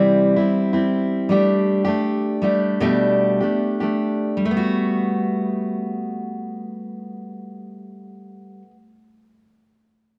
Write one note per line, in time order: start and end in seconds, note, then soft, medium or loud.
0.00 0.37 C3 medium
0.00 0.37 E3 medium
0.00 0.38 G3 medium
0.00 0.37 C4 medium
0.00 0.35 E4 medium
0.36 0.74 G3 soft
0.36 0.73 C4 soft
0.36 0.72 E4 soft
0.73 1.28 G3 soft
0.73 1.30 C4 soft
0.73 1.29 E4 soft
1.29 1.86 G3 medium
1.29 1.87 A3 medium
1.29 1.85 D4 medium
1.29 1.83 G4 medium
1.85 2.42 A3 soft
1.85 2.42 D4 soft
1.85 2.43 G4 medium
2.42 2.80 G3 medium
2.42 2.80 A3 medium
2.42 2.81 D4 medium
2.42 2.82 G4 medium
2.80 3.41 B2 medium
2.80 3.41 G3 medium
2.80 3.42 A3 medium
2.80 3.41 D4 medium
2.80 3.39 G4 medium
3.40 3.82 A3 soft
3.40 3.80 D4 soft
3.40 3.79 G4 soft
3.80 4.44 A3 soft
3.80 4.44 D4 soft
3.80 4.43 G4 soft
4.37 8.62 G3 medium
4.45 8.70 A3 medium
4.51 8.76 B3 medium
4.57 8.82 F#4 medium